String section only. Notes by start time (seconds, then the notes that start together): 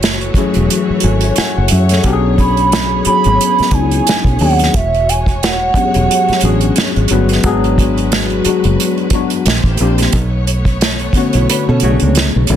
Already playing: E3 A3 F#4 C#5
2.04 B3 G#4
4.73 G#3 F#4 C#5
7.44 F#4 B4
9.46 A#3 G4 C5
10.14 A3 B3 C#5